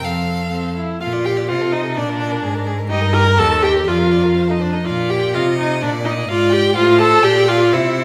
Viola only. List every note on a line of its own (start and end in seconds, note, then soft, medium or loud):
0.03 0.47 C4 soft
0.52 0.76 C4 soft
0.76 1.01 E4 soft
1.02 1.27 F4 medium
1.25 1.51 G4 medium
1.49 1.74 F4 medium
1.73 1.98 D#4 medium
1.96 2.67 D4 medium
2.90 3.15 D#4 medium
3.14 3.40 A#4 loud
3.39 3.64 A4 loud
3.63 3.89 G4 loud
3.88 4.37 F4 medium
4.50 4.55 D#4 medium
4.62 4.75 D4 medium
4.74 4.87 D#4 medium
4.85 5.12 F4 medium
5.10 5.36 G4 medium
5.34 5.58 F4 medium
5.58 5.82 D#4 medium
5.82 5.90 D4 medium
6.05 6.13 D#4 medium
6.30 6.54 F4 medium
6.53 6.76 G4 medium
6.76 7.00 F4 loud
7.01 7.25 A4 loud
7.24 7.50 G4 loud
7.48 7.75 F4 medium
7.73 8.04 E4 medium